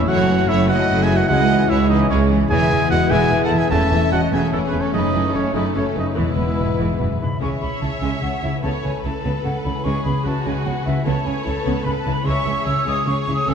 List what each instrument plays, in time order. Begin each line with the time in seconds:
Already playing: harp E2 E3 C#4 A4 C#5 A5, french horn section A3
0.00 harp E4
0.06 double bass section F#1, cello section F#2, harp F#2, viola section F#3 A3, violin section E4 F#4 C#5, french horn section E4, clarinet F#4, trumpet F#5
0.19 harp C#3
0.26 viola section E3 F#3, violin section C#4 F#4, harp C#4
0.39 harp E4
0.48 double bass section F#1, cello section F#2, viola section F#3 A3, violin section E4 F#4 C#5, clarinet E4, harp A4, trumpet E5
0.59 harp C#5
0.68 viola section E3 F#3, violin section C#4 F#4 D#5, clarinet F#4, trumpet F#5, harp F#5
0.79 harp A5
0.88 double bass section F#1, cello section F#2, viola section F#3 A3, violin section E4 F#4
0.99 clarinet G#4, harp C#5, violin section E5, trumpet G#5
1.08 viola section E3 F#3, violin section C#4 F#4, harp A4
1.16 clarinet F#4, violin section D#5, trumpet F#5
1.20 harp E4
1.29 double bass section C#2, cello section C#2, harp C#3, french horn section G#3, viola section G#3, violin section E4 D#5, clarinet F#4, trumpet F#5
1.40 harp G#3
1.50 viola section E3, violin section C#4 G#4, harp C#4
1.60 harp E4
1.69 double bass section C#2, cello section C#2, viola section G#3, clarinet E4, violin section E4 C#5, harp G#4, trumpet E5
1.80 harp C#5
1.89 viola section E3, violin section C#4 G#4 B4, clarinet D#4, trumpet D#5
2.00 harp G#5
2.09 double bass section C#2, cello section C#2, viola section G#3, clarinet C#4, violin section E4 G#4, trumpet C#5
2.21 harp C#5
2.29 viola section E3, violin section C#4 G#4, harp G#4
2.48 double bass section E1, cello section E2, timpani E2, harp E3, viola section E3 G#3, violin section B3 E4 E5, french horn section B3 E4, clarinet G#4, trumpet G#5
2.60 harp B3
2.71 double bass section E1, cello section E2, viola section E3
2.91 double bass section E1, cello section E2, viola section E3, clarinet F#4, harp B4, violin section D#5, trumpet F#5
3.10 double bass section E1, cello section E2, viola section E3, clarinet G#4, violin section E5, trumpet G#5, harp G#5
3.21 harp B5
3.31 double bass section E1, cello section E2, viola section E3, harp G#5
3.44 clarinet A4, violin section F#5, trumpet A5
3.51 double bass section E1, cello section E2, viola section E3, harp B4
3.57 clarinet G#4, violin section E5, trumpet G#5
3.61 harp G#4
3.71 double bass section E1, timpani E2, cello section E2, viola section C#3 E3, harp E3, violin section A3 C#4 E5, french horn section A3 C#4, clarinet A4, trumpet A5
3.81 harp A3
3.91 double bass section E1, cello section E2, viola section E3, harp C#4
4.01 harp C#5
4.12 double bass section E1, cello section E2, viola section C#3, clarinet F#4, harp A4, violin section D#5, trumpet F#5
4.31 double bass section E1, cello section E2, viola section C#3, clarinet G#4, violin section E5, trumpet G#5, harp C#6
4.42 harp A5
4.52 double bass section E1, cello section E2, viola section E3, clarinet A3, violin section E4, trumpet A4, harp C#6
4.66 clarinet B3, violin section G#4, trumpet B4
4.73 double bass section E1, cello section E2, viola section C#3, harp A4
4.80 clarinet C#4, violin section A4, trumpet C#5
4.84 harp C#5
4.93 double bass section F#1, cello section F#2, harp F#2, viola section C#3 A3, clarinet D#4, violin section B4, trumpet D#5
5.05 harp C#3
5.13 double bass section F#1, cello section F#2, viola section E3, harp A3
5.25 harp E4
5.34 double bass section F#1, cello section F#2, viola section C#3, clarinet C#4, violin section A4, trumpet C#5, harp C#5
5.46 harp A4
5.54 double bass section F#1, cello section F#2, viola section C#3, clarinet D#4, violin section B4, trumpet D#5, harp E5
5.67 harp C#6
5.74 double bass section F#1, cello section F#2, viola section E3, clarinet C#4, violin section A4, trumpet C#5, harp E5
5.87 harp A4
5.96 double bass section F#1, cello section F#2, viola section C#3, clarinet D#4, violin section B4, harp C#5, trumpet D#5
6.08 harp E4
6.16 double bass section E1, timpani E2, cello section E2, harp E2, viola section E3 G#3, french horn section G#3 B3, violin section B3 E4 B4, clarinet E4, trumpet E5
6.29 harp B2
6.37 double bass section E1, cello section E2, viola section E3, harp G#3
6.49 harp E4
6.58 double bass section E1, cello section G#2, viola section E3, harp E5
6.70 harp G#4
6.79 double bass section E1, viola section E3, harp E5
6.90 harp E6
7.00 double bass section E1, cello section F#2, viola section E3, harp E5
7.11 harp G#4
7.20 double bass section E1, cello section G#2, harp C#3 E5, viola section E3, flute B5
7.28 harp G#3 E4
7.36 harp E5
7.40 double bass section C#2, cello section C#3, violin section G#3 G#4 C#5, viola section E5, flute C#6
7.61 double bass section C#2, cello section C#3, violin section C#4, flute B5
7.81 double bass section C#2, cello section C#3, violin section E4, flute A5
8.01 double bass section C#2, cello section C#3, violin section G#3, flute G#5
8.22 double bass section C#2, cello section C#3, violin section C#4, flute F#5
8.43 double bass section C#2, cello section C#3, harp C#3, violin section E4, flute E5
8.50 harp A3
8.55 harp E4
8.59 double bass section C#2, harp B4, viola section C#5
8.63 cello section C#3, timpani C#3, violin section B3 A4 B4, flute A5
8.83 double bass section C#2, cello section C#3, violin section C#4, flute G#5
9.03 double bass section C#2, cello section C#3, violin section E4, viola section A4, flute A5
9.24 double bass section C#2, cello section C#3, violin section B3
9.44 double bass section C#2, cello section C#3, violin section C#4, flute F#5
9.64 double bass section C#2, cello section C#3, violin section E4, flute B5
9.68 harp C#3
9.72 harp G#3
9.77 harp E4
9.81 violin section G#3 G#4, harp B4, flute C#6
9.85 double bass section C#2, cello section C#3, viola section G#4
10.04 double bass section C#2, cello section C#3, violin section B3, flute B5
10.24 double bass section C#2, cello section C#3, violin section E4, viola section F#4, flute A5
10.46 double bass section C#2, cello section C#3, violin section G#3, flute G#5
10.66 double bass section C#2, cello section C#3, violin section B3, flute F#5
10.86 double bass section C#2, cello section C#3, harp C#3, violin section E4, flute E5
10.93 harp A3
10.97 harp E4
11.02 double bass section C#2, violin section B3 A4, harp B4, viola section C#5, flute A5
11.06 cello section C#3, violin section B4
11.26 double bass section C#2, cello section C#3, violin section C#4, flute G#5
11.45 double bass section C#2, cello section C#3, violin section E4, flute A5
11.65 double bass section C#2, cello section C#3, violin section B3
11.85 double bass section C#2, cello section C#3, violin section C#4, viola section B4, flute B5
12.00 flute A5
12.06 double bass section C#2, cello section C#3, harp C#3, violin section E4
12.13 harp G#3, flute B5
12.17 harp E4
12.22 cello section C#3, harp C#5, flute C#6
12.26 double bass section C#2, violin section G#3 G#4 C#5, viola section E5
12.46 double bass section C#2, cello section C#3, violin section C#4
12.66 double bass section C#2, cello section C#3, violin section E4, viola section C#5, flute E6
12.86 double bass section C#2, cello section C#3, violin section G#3, flute D#6
13.06 double bass section C#2, cello section C#3, violin section C#4, viola section G#4, flute C#6
13.21 flute C#6
13.27 double bass section C#2, cello section C#3, harp C#3, violin section E4
13.34 harp A3, flute D#6
13.39 harp F#4
13.44 double bass section C#2, violin section C#4 A4, harp C#5
13.48 cello section C#3, viola section A4, flute E6